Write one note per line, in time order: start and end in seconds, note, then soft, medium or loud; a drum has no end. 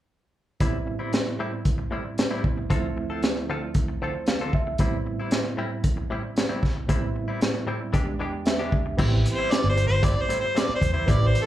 0.60 2.40 A2 medium
0.60 0.76 A2 medium
0.60 2.40 G3 medium
0.60 0.76 G3 medium
0.60 2.40 B3 medium
0.60 0.77 C4 medium
0.60 2.41 C4 medium
0.60 0.77 E4 medium
0.60 2.41 E4 medium
0.60 kick medium
0.60 closed hi-hat medium
0.86 muted clean electric guitar stroke soft
0.99 1.12 G3 soft
0.99 1.12 C4 soft
0.99 1.12 E4 soft
1.12 muted clean electric guitar stroke soft
1.12 snare loud
1.12 closed hi-hat medium
1.26 muted clean electric guitar stroke soft
1.39 1.52 A2 medium
1.39 1.53 G3 medium
1.39 1.52 C4 medium
1.39 1.52 E4 medium
1.53 muted clean electric guitar stroke soft
1.65 kick medium
1.65 closed hi-hat medium
1.78 muted clean electric guitar stroke soft
1.91 2.04 A2 medium
1.91 2.05 G3 medium
1.91 2.04 C4 medium
1.91 2.04 E4 medium
2.05 muted clean electric guitar stroke soft
2.18 snare loud
2.18 closed hi-hat medium
2.31 2.43 A2 soft
2.31 2.43 G3 medium
2.31 2.44 C4 soft
2.31 2.43 E4 medium
2.44 2.70 A2 soft
2.44 2.70 G3 soft
2.44 2.70 B3 soft
2.44 2.70 C4 soft
2.44 2.70 E4 soft
2.44 muted clean electric guitar stroke soft
2.44 kick medium
2.57 muted clean electric guitar stroke soft
2.70 4.75 D2 medium
2.70 2.86 D3 medium
2.70 4.75 F3 medium
2.70 4.76 A3 medium
2.70 2.86 C4 medium
2.70 4.76 C4 medium
2.70 4.76 E4 medium
2.70 2.86 F4 medium
2.70 2.86 A4 medium
2.70 kick medium
2.70 closed hi-hat medium
2.97 muted clean electric guitar stroke soft
3.10 3.22 C4 soft
3.10 3.22 F4 soft
3.10 3.22 A4 medium
3.23 muted clean electric guitar stroke soft
3.23 snare medium
3.23 closed hi-hat medium
3.36 muted clean electric guitar stroke soft
3.50 3.62 D3 medium
3.50 3.62 C4 medium
3.50 3.62 F4 medium
3.50 3.62 A4 medium
3.63 muted clean electric guitar stroke soft
3.74 kick medium
3.74 closed hi-hat medium
3.88 muted clean electric guitar stroke soft
4.02 4.15 D3 medium
4.02 4.14 C4 medium
4.02 4.14 F4 medium
4.02 4.14 A4 medium
4.02 4.26 C5 medium
4.15 muted clean electric guitar stroke soft
4.26 4.52 F5 medium
4.26 snare medium
4.26 closed hi-hat soft
4.41 4.53 D3 soft
4.41 4.53 C4 soft
4.41 4.54 F4 medium
4.41 4.54 A4 medium
4.53 4.78 E5 medium
4.53 muted clean electric guitar stroke soft
4.53 kick medium
4.67 muted clean electric guitar stroke soft
4.78 6.85 A2 medium
4.78 4.95 A2 medium
4.78 6.85 G3 medium
4.78 4.95 G3 medium
4.78 6.85 B3 medium
4.78 6.85 C4 medium
4.78 4.96 C4 medium
4.78 6.85 E4 medium
4.78 4.96 E4 medium
4.78 kick loud
4.78 closed hi-hat medium
5.06 muted clean electric guitar stroke soft
5.20 5.32 G3 soft
5.20 5.32 C4 soft
5.20 5.32 E4 soft
5.31 muted clean electric guitar stroke soft
5.31 snare medium
5.31 closed hi-hat medium
5.45 muted clean electric guitar stroke soft
5.57 5.71 A2 medium
5.57 5.71 G3 medium
5.57 5.71 C4 medium
5.57 5.70 E4 medium
5.71 muted clean electric guitar stroke soft
5.84 kick loud
5.84 closed hi-hat medium
5.97 muted clean electric guitar stroke soft
6.10 6.23 A2 medium
6.10 6.23 G3 medium
6.10 6.23 C4 medium
6.10 6.22 E4 medium
6.23 muted clean electric guitar stroke soft
6.36 snare medium
6.36 closed hi-hat medium
6.49 6.62 A2 soft
6.49 6.62 G3 medium
6.49 6.62 C4 medium
6.49 6.62 E4 medium
6.63 muted clean electric guitar stroke soft
6.63 kick medium
6.63 snare soft
6.76 muted clean electric guitar stroke soft
6.87 7.91 A2 medium
6.87 7.05 A2 medium
6.87 7.91 G3 medium
6.87 7.05 G3 medium
6.87 7.91 B3 medium
6.87 7.92 C4 medium
6.87 7.05 C4 medium
6.87 7.92 E4 medium
6.87 7.05 E4 medium
6.87 kick medium
6.87 closed hi-hat medium
7.16 muted clean electric guitar stroke soft
7.28 7.40 G3 soft
7.28 7.41 C4 soft
7.28 7.41 E4 medium
7.41 muted clean electric guitar stroke soft
7.41 snare loud
7.41 closed hi-hat medium
7.54 muted clean electric guitar stroke soft
7.67 7.80 A2 medium
7.67 7.81 G3 medium
7.67 7.80 C4 medium
7.67 7.80 E4 medium
7.81 muted clean electric guitar stroke soft
7.93 8.96 E2 medium
7.93 8.06 E3 medium
7.93 8.96 G#3 medium
7.93 8.07 G#3 medium
7.93 8.96 B3 medium
7.93 8.06 D4 medium
7.93 8.97 D4 medium
7.93 8.06 G4 medium
7.93 8.97 G4 medium
7.93 kick medium
7.93 closed hi-hat medium
8.07 muted clean electric guitar stroke soft
8.19 8.33 E3 medium
8.19 8.33 G#3 medium
8.19 8.32 D4 medium
8.19 8.32 G4 medium
8.19 8.44 G5 medium
8.33 muted clean electric guitar stroke soft
8.46 8.95 E5 medium
8.46 snare medium
8.46 closed hi-hat soft
8.59 8.72 E3 soft
8.59 8.72 G#3 medium
8.59 8.72 D4 medium
8.59 8.72 G4 medium
8.72 muted clean electric guitar stroke soft
8.72 kick medium
8.86 muted clean electric guitar stroke soft
8.97 9.23 A1 medium
8.97 9.12 A2 medium
8.97 9.12 G3 medium
8.97 11.03 B3 medium
8.97 11.04 C4 medium
8.97 9.12 C4 loud
8.97 11.04 E4 medium
8.97 9.11 E4 loud
8.97 11.04 G4 medium
8.97 kick loud
8.97 crash loud
9.12 muted clean electric guitar stroke soft
9.25 muted clean electric guitar stroke soft
9.25 closed hi-hat medium
9.34 9.54 C5 medium
9.38 9.50 G3 soft
9.38 9.51 C4 soft
9.38 9.51 E4 medium
9.51 9.68 D5 medium
9.51 muted clean electric guitar stroke soft
9.51 snare loud
9.51 closed hi-hat medium
9.64 9.88 G1 medium
9.69 9.86 C5 medium
9.77 muted clean electric guitar stroke soft
9.77 closed hi-hat medium
9.87 10.14 G1 medium
9.87 10.05 C5 medium
9.87 muted clean electric guitar stroke soft
10.03 10.16 A2 medium
10.03 10.16 G3 medium
10.03 10.16 C4 medium
10.03 10.15 E4 medium
10.03 10.23 D5 medium
10.03 kick loud
10.03 closed hi-hat medium
10.16 muted clean electric guitar stroke soft
10.21 10.38 C5 medium
10.29 10.45 A2 medium
10.29 10.45 G3 medium
10.29 10.45 C4 medium
10.29 10.46 E4 medium
10.29 closed hi-hat medium
10.40 10.59 C5 medium
10.55 10.68 A2 medium
10.55 10.68 G3 medium
10.55 10.68 C4 medium
10.55 10.68 E4 medium
10.55 10.74 D5 medium
10.55 snare loud
10.55 closed hi-hat medium
10.69 muted clean electric guitar stroke soft
10.69 muted fingered electric bass stroke soft
10.75 10.91 C5 medium
10.82 10.94 E2 medium
10.82 muted clean electric guitar stroke soft
10.82 kick medium
10.82 closed hi-hat medium
10.92 11.07 G3 soft
10.92 11.07 C4 soft
10.92 11.07 E4 medium
10.92 11.12 C5 medium
11.06 11.32 A1 medium
11.06 11.21 A2 medium
11.06 11.21 G3 medium
11.06 11.46 C4 medium
11.06 11.21 C4 medium
11.06 11.46 E4 medium
11.06 11.20 E4 medium
11.06 11.46 G4 medium
11.06 11.46 B4 medium
11.06 kick loud
11.06 closed hi-hat medium
11.10 11.29 D5 medium
11.21 muted clean electric guitar stroke soft
11.27 11.45 C5 medium
11.35 muted clean electric guitar stroke soft
11.35 closed hi-hat medium